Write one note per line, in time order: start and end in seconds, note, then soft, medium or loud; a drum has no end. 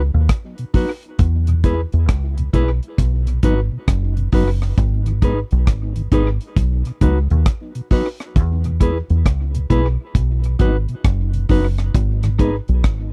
0.00 0.10 C#2 medium
0.14 0.28 D#2 medium
0.14 0.20 B2 medium
0.29 kick loud
0.29 cross-stick loud
0.29 closed hi-hat loud
0.58 0.65 B2 medium
0.58 closed hi-hat soft
0.74 0.86 F#3 medium
0.74 0.86 B3 medium
0.74 0.90 D#4 medium
0.74 0.86 D#4 medium
0.74 0.90 F#4 medium
0.74 0.91 B4 medium
0.74 kick medium
0.74 open hi-hat medium
1.03 closed hi-hat soft
1.19 1.84 E2 loud
1.19 kick loud
1.19 closed hi-hat medium
1.47 1.54 E2 medium
1.47 1.54 B2 medium
1.47 closed hi-hat medium
1.64 1.75 G#3 medium
1.64 1.75 B3 medium
1.64 1.80 E4 medium
1.64 1.75 E4 medium
1.64 1.80 G#4 medium
1.64 1.80 B4 medium
1.64 kick loud
1.64 closed hi-hat medium
1.92 2.09 E2 medium
1.92 closed hi-hat soft
2.09 2.48 C#2 medium
2.09 kick loud
2.09 cross-stick medium
2.09 closed hi-hat medium
2.37 2.44 E2 medium
2.37 2.44 B2 medium
2.37 closed hi-hat medium
2.53 2.79 B1 medium
2.53 2.64 G#3 medium
2.53 2.64 B3 medium
2.53 2.69 E4 medium
2.53 2.65 E4 medium
2.53 2.70 G#4 medium
2.53 2.70 B4 loud
2.53 kick medium
2.53 closed hi-hat medium
2.83 closed hi-hat soft
2.98 3.38 B1 medium
2.98 kick loud
2.98 closed hi-hat medium
3.27 3.33 B2 medium
3.27 closed hi-hat soft
3.43 3.69 G#1 medium
3.43 3.54 F#3 medium
3.43 3.54 B3 medium
3.43 3.59 D#4 medium
3.43 3.55 D#4 medium
3.43 3.59 F#4 medium
3.43 3.60 B4 medium
3.43 kick medium
3.43 closed hi-hat medium
3.72 3.78 B2 medium
3.88 4.27 F#1 medium
3.88 kick loud
3.88 cross-stick loud
3.88 closed hi-hat loud
4.17 4.23 B2 medium
4.17 closed hi-hat soft
4.32 4.72 F#1 medium
4.32 4.44 F#3 medium
4.32 4.44 B3 medium
4.32 4.48 D#4 medium
4.32 4.44 D#4 medium
4.32 4.49 F#4 medium
4.32 4.49 B4 medium
4.32 kick medium
4.32 open hi-hat medium
4.62 cross-stick medium
4.78 5.42 G#1 loud
4.78 kick loud
4.78 closed hi-hat medium
5.06 5.12 G#2 medium
5.06 5.12 D#3 medium
5.06 closed hi-hat medium
5.22 5.33 G#3 medium
5.22 5.33 B3 medium
5.22 5.38 D#4 medium
5.22 5.34 D#4 medium
5.22 5.38 G#4 medium
5.22 5.39 B4 medium
5.22 kick loud
5.22 closed hi-hat medium
5.51 5.68 B1 medium
5.51 closed hi-hat soft
5.67 6.07 G#1 medium
5.67 kick loud
5.67 cross-stick medium
5.67 closed hi-hat medium
5.96 6.02 G#2 medium
5.96 6.02 D#3 medium
5.96 closed hi-hat medium
6.12 6.37 G#1 medium
6.12 6.23 G#3 medium
6.12 6.23 B3 medium
6.12 6.23 D#4 medium
6.12 6.28 D#4 medium
6.12 6.28 G#4 medium
6.12 6.29 B4 loud
6.12 kick medium
6.12 closed hi-hat medium
6.41 closed hi-hat soft
6.56 6.82 B1 medium
6.56 kick loud
6.56 closed hi-hat medium
6.85 6.92 B2 medium
6.85 closed hi-hat medium
7.01 7.27 C#2 loud
7.01 7.12 F#3 medium
7.01 7.12 B3 medium
7.01 7.17 D#4 medium
7.01 7.13 D#4 medium
7.01 7.18 F#4 medium
7.01 7.18 B4 medium
7.01 kick medium
7.01 closed hi-hat medium
7.30 7.45 D#2 medium
7.30 7.36 B2 medium
7.30 closed hi-hat soft
7.46 kick loud
7.46 cross-stick loud
7.46 closed hi-hat medium
7.75 7.81 B2 medium
7.75 closed hi-hat medium
7.91 8.02 F#3 medium
7.91 8.03 B3 medium
7.91 8.07 D#4 medium
7.91 8.03 D#4 medium
7.91 8.07 F#4 medium
7.91 8.08 B4 medium
7.91 kick medium
7.91 open hi-hat medium
8.20 cross-stick medium
8.20 closed hi-hat soft
8.36 9.00 E2 loud
8.36 kick loud
8.36 closed hi-hat medium
8.64 8.71 E2 medium
8.64 8.71 B2 medium
8.64 closed hi-hat soft
8.80 8.92 G#3 medium
8.80 8.92 B3 medium
8.80 8.96 E4 medium
8.80 8.92 E4 medium
8.80 8.97 G#4 medium
8.80 8.97 B4 medium
8.80 kick medium
8.80 closed hi-hat medium
9.10 9.26 E2 medium
9.10 closed hi-hat soft
9.26 9.65 C#2 medium
9.26 kick loud
9.26 cross-stick medium
9.26 closed hi-hat medium
9.54 9.61 E2 medium
9.54 9.61 B2 medium
9.54 closed hi-hat medium
9.70 9.96 B1 medium
9.70 9.81 G#3 medium
9.70 9.82 B3 medium
9.70 9.86 E4 medium
9.70 9.82 E4 medium
9.70 9.86 G#4 medium
9.70 9.87 B4 loud
9.70 kick medium
9.70 closed hi-hat medium
10.15 10.55 B1 medium
10.15 kick loud
10.15 closed hi-hat medium
10.44 10.50 B2 medium
10.44 closed hi-hat medium
10.59 10.85 G#1 medium
10.59 10.71 F#3 medium
10.59 10.71 B3 medium
10.59 10.75 D#4 medium
10.59 10.71 D#4 medium
10.59 10.76 F#4 medium
10.59 10.76 B4 medium
10.59 kick medium
10.59 closed hi-hat medium
10.89 10.95 B2 medium
10.89 closed hi-hat soft
11.05 11.44 F#1 medium
11.05 kick loud
11.05 cross-stick loud
11.05 closed hi-hat medium
11.33 11.40 B2 medium
11.33 closed hi-hat medium
11.49 11.89 F#1 medium
11.49 11.61 F#3 medium
11.49 11.61 B3 medium
11.49 11.65 D#4 medium
11.49 11.61 D#4 medium
11.49 11.66 F#4 medium
11.49 11.66 B4 medium
11.49 kick medium
11.49 open hi-hat medium
11.78 cross-stick medium
11.78 closed hi-hat soft
11.95 12.59 G#1 loud
11.95 kick loud
11.95 closed hi-hat medium
12.23 12.30 G#2 medium
12.23 12.29 D#3 medium
12.23 cross-stick medium
12.23 closed hi-hat soft
12.39 12.50 G#3 medium
12.39 12.50 B3 medium
12.39 12.55 D#4 medium
12.39 12.51 D#4 medium
12.39 12.55 G#4 medium
12.39 12.56 B4 medium
12.39 kick medium
12.39 closed hi-hat medium
12.68 12.85 B1 medium
12.68 closed hi-hat soft
12.84 13.13 G#1 medium
12.84 kick loud
12.84 cross-stick medium
12.84 closed hi-hat medium